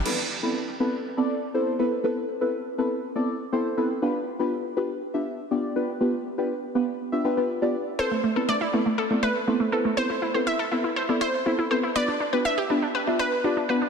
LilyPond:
<<
  \new Staff \with { instrumentName = "Synth pluck" } { \time 4/4 \key a \minor \tempo 4 = 121 r1 | r1 | r1 | r1 |
c''4 d''4. b'4. | c''4 e''4. c''4. | d''4 e''4. b'4. | }
  \new Staff \with { instrumentName = "Synth arpeggio sound" } { \time 4/4 \key a \minor r1 | r1 | r1 | r1 |
a'16 a16 a16 a'16 a16 e'16 a16 a16 a'16 a16 a16 r16 a16 a16 a'16 a16 | c''16 e'16 e'16 c''16 e'16 a'16 e'16 e'16 c''16 e'16 e'16 r16 e'16 e'16 c''16 e'16 | b'16 d'16 d'16 b'16 d'16 g'16 d'16 d'16 b'16 d'16 d'16 r16 d'16 d'16 b'16 d'16 | }
  \new Staff \with { instrumentName = "Synth stab" } { \time 4/4 \key a \minor <b c' e' a' b'>16 r8 <b c' e' a' b'>16 r8 <b c' e' a' b'>16 r8 <b c' e' a' d''>16 r8 <b c' e' a' c''>8 <b c' e' a' b'>16 r16 | <b c' e' a' b'>16 r8 <b c' e' a' b'>16 r8 <b c' e' a' b'>16 r8 <b c' e' a' d''>16 r8 <b c' e' a' c''>8 <b c' e' a' b'>16 r16 | <b d' f' g' b'>16 r8 <b d' f' g' b'>16 r8 <b d' f' g' b'>16 r8 <b d' f' g' e''>16 r8 <b d' f' g' d''>8 <b d' f' g' b'>16 r16 | <b d' f' g' b'>16 r8 <b d' f' g' b'>16 r8 <b d' f' g' b'>16 r8 <b d' f' g' e''>16 <b d' f' g' b'>16 <b d' f' g' b'>16 r16 <b d' f' g' d''>16 r8 |
<b c' e' a' b'>16 r8 <b c' e' a' b'>16 r8 <b c' e' a' b'>16 r8 <b c' e' a' d''>16 r8 <b c' e' a' c''>8 <b c' e' a' b'>16 r16 | <b c' e' a' b'>16 r8 <b c' e' a' b'>16 r8 <b c' e' a' b'>16 r8 <b c' e' a' d''>16 r8 <b c' e' a' c''>8 <b c' e' a' b'>16 r16 | <b d' f' g' b'>16 r8 <b d' f' g' b'>16 r8 <b d' f' g' b'>16 r8 <b d' f' g' e''>16 r8 <b d' f' g' d''>8 <b d' f' g' b'>16 r16 | }
  \new DrumStaff \with { instrumentName = "Drums" } \drummode { \time 4/4 cymc4 r4 r4 r4 | r4 r4 r4 r4 | r4 r4 r4 r4 | r4 r4 r4 r4 |
r4 r4 r4 r4 | r4 r4 r4 r4 | r4 r4 r4 r4 | }
>>